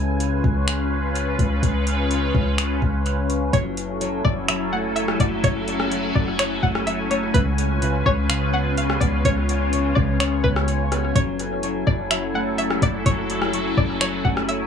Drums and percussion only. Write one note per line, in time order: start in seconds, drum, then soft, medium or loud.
0.20 closed hi-hat medium
0.44 kick loud
0.68 finger snap loud
0.68 closed hi-hat medium
1.15 closed hi-hat medium
1.39 kick loud
1.39 closed hi-hat medium
1.63 kick loud
1.63 closed hi-hat medium
1.87 closed hi-hat medium
2.11 closed hi-hat medium
2.35 kick loud
2.58 finger snap loud
2.58 closed hi-hat medium
2.82 kick medium
3.06 closed hi-hat medium
3.30 closed hi-hat medium
3.53 kick loud
3.53 closed hi-hat medium
3.77 closed hi-hat medium
4.01 closed hi-hat medium
4.25 kick loud
4.48 finger snap loud
4.48 closed hi-hat medium
4.96 closed hi-hat medium
5.08 cross-stick loud
5.20 kick loud
5.20 closed hi-hat medium
5.44 kick loud
5.44 closed hi-hat medium
5.68 closed hi-hat medium
5.80 cross-stick loud
5.92 closed hi-hat medium
6.16 kick loud
6.39 finger snap loud
6.39 closed hi-hat medium
6.63 kick loud
6.75 cross-stick loud
6.87 closed hi-hat medium
7.11 closed hi-hat medium
7.34 kick loud
7.34 closed hi-hat medium
7.58 closed hi-hat medium
7.82 closed hi-hat medium
8.06 kick loud
8.30 finger snap loud
8.30 closed hi-hat medium
8.77 closed hi-hat medium
8.90 cross-stick loud
9.01 kick loud
9.01 closed hi-hat medium
9.25 kick loud
9.25 closed hi-hat medium
9.49 closed hi-hat medium
9.73 closed hi-hat medium
9.97 kick loud
10.20 finger snap loud
10.20 closed hi-hat medium
10.44 kick loud
10.56 cross-stick loud
10.68 closed hi-hat medium
10.92 cross-stick medium
10.92 closed hi-hat medium
11.16 kick loud
11.16 closed hi-hat medium
11.39 closed hi-hat medium
11.63 closed hi-hat medium
11.87 kick loud
12.11 finger snap loud
12.11 closed hi-hat medium
12.58 closed hi-hat medium
12.71 cross-stick loud
12.82 kick loud
12.82 closed hi-hat medium
13.06 kick loud
13.06 closed hi-hat medium
13.30 closed hi-hat medium
13.42 cross-stick loud
13.53 closed hi-hat medium
13.77 kick loud
14.01 finger snap loud
14.01 closed hi-hat medium
14.25 kick loud
14.37 cross-stick loud
14.49 closed hi-hat medium